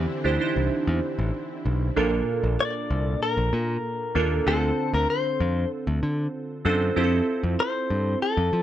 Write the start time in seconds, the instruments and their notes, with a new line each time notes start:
Already playing: string machine D3 C4 E4, synth keys E3 D4 E4 G4 C5
0.24 picked electric bass D2, synth keys D4 E4 G4 C5
0.40 synth keys D4 D#4 G4 C5
0.47 synth keys E4
0.56 picked electric bass C2
0.87 picked electric bass E2
1.19 picked electric bass A1
1.65 picked electric bass B1
1.96 picked electric bass A#1, synth keys A#2 A#3 D4 F4 A4 A#4
2.43 picked electric bass A#1
2.61 clean electric guitar D5
2.90 picked electric bass C2
3.23 clean electric guitar A#4
3.37 picked electric bass A#1
3.53 picked electric bass A#2
4.15 picked electric bass D#2, synth keys A#3 D4 F4 A4 A#4
4.46 picked electric bass D2, synth keys D3 C4 D4 F4 A4 C5, clean electric guitar A4
4.93 picked electric bass D2, clean electric guitar A#4
5.10 clean electric guitar C5
5.40 picked electric bass F2
5.87 picked electric bass D2
6.03 picked electric bass D3
6.65 picked electric bass F#2, synth keys C4 D4 F4 A4 C5
6.96 picked electric bass F2, synth keys C4 E4 F4 G4 C5
7.04 synth keys A4
7.43 picked electric bass F2
7.60 clean electric guitar C5
7.90 picked electric bass G2
8.22 clean electric guitar A4
8.37 picked electric bass F2
8.53 picked electric bass F3